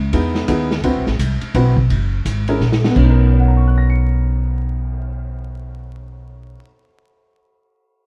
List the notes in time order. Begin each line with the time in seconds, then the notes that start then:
Already playing: C#2
0.13 E2 B3 D#4 E4 G#4, kick, ride
0.35 snare
0.48 D#2 B3 D#4 E4 G#4, kick, hi-hat pedal, ride
0.71 snare
0.83 D2 C4 E4 F#4 B4, kick, ride
0.96 C2
1.06 A1, snare
1.19 C2, kick, hi-hat pedal, ride
1.41 muted upright bass stroke, ride
1.54 B1 C4 E4 F#4 B4, kick, ride
1.77 kick
1.90 F#1, kick, ride
2.25 G#1, kick, hi-hat pedal, ride
2.48 C#4 E4 G#4 A#4, ride
2.60 A#1, snare
2.72 snare
2.84 B2, snare
2.90 B3
2.96 B1 C#4, kick, crash
3.03 D#4
3.10 A#4
3.18 cymbal swell
3.33 C#5
3.40 F#5
3.48 A#5
3.57 C#6
3.68 F#6
3.78 A#6
3.90 C#7